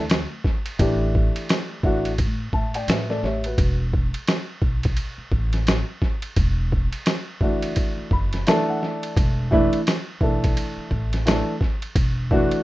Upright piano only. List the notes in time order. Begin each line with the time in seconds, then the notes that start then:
0.79 E3 A3 D4 G4
1.83 E3 A3 D4 F#4
2.53 E5 A5
2.75 D5 G5
2.89 B4 E5
3.10 A4 D5
3.25 G4 C#5 E5
3.46 F#4 B4
7.41 E3 A3 D4 F#4
8.13 B5
8.47 E3 A3 D4 A4 A5
8.69 F#5
8.82 D5
9.51 E3 A3 D4 E4
10.21 E3 A3 D4 A4
11.26 E3 A3 D4 A4
12.31 E3 A3 D4 F#4